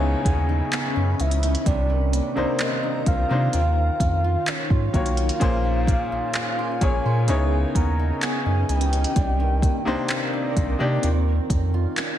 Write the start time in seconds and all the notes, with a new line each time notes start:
Already playing: C#2 C#3 B3 C#4 D#4 E4 B4 C#5 G#5 B5, downlifter
0.25 D#2 B3, kick, closed hi-hat
0.49 D#4
0.73 B3, clap, closed hi-hat
0.96 F#2 D#4
1.20 C#2 E3 E5, closed hi-hat
1.31 closed hi-hat
1.43 D#4, closed hi-hat
1.55 closed hi-hat
1.66 C2 C3 D#3 D4 A#4 C5 D5 A#5, kick, closed hi-hat
1.90 D#3
2.13 A#3 D5, closed hi-hat
2.36 C2 C3 A#3 C4 D4 D#4 C5
2.59 A#3 D#5, clap, closed hi-hat
2.83 D4
3.06 C2 D#3 F5, kick, closed hi-hat
3.29 C3 A#3 D4 D#4 C5
3.53 D#2 D#3 D#4 F4 C#5 F5, closed hi-hat
4.00 F2 C#4, kick, closed hi-hat
4.24 F4
4.47 C#4 C#5, clap, closed hi-hat
4.70 G#2 F4, kick
4.93 B1 D#3 F#3 A#3 F4 F#4 C#5 F5, kick, closed hi-hat
5.06 closed hi-hat
5.17 F4, closed hi-hat
5.29 closed hi-hat
5.40 A#1 A#2 A#3 C#4 G#4 A#4 C5 G#5, kick, closed hi-hat
5.65 C#4
5.87 G#4, kick, closed hi-hat
6.12 A#1 C5
6.34 G#4, clap, closed hi-hat
6.59 C5
6.81 A#1 A#2 A#3 C#4 G#4 C#5 G#5, kick, closed hi-hat
7.05 A#2 C5
7.28 C#2 C#3 B3 C#4 D#4 E4 B4 C#5 D#5 G#5, closed hi-hat
7.75 D#2 B3 A#5, kick, closed hi-hat
7.99 D#4
8.22 B3 G#5, clap, closed hi-hat
8.46 F#2 D#4
8.69 C#2 E3 G5, closed hi-hat
8.81 closed hi-hat
8.93 D#4, closed hi-hat
9.04 closed hi-hat
9.16 C2 C3 C4 D4 A#4 D5, kick, closed hi-hat
9.40 D#3
9.62 A#3, kick, closed hi-hat
9.85 C2 C3 A#3 D4 D#4 C5
10.09 A#3, clap, closed hi-hat
10.33 D4
10.57 C2 D#3, kick, closed hi-hat
10.79 C3 A#3 D4 D#4 G4
11.03 D#2 D#3 C#4 D#4 F4 D#5 F5, closed hi-hat
11.50 F2 C#4, kick, closed hi-hat
11.74 F4
11.97 C#4, clap, closed hi-hat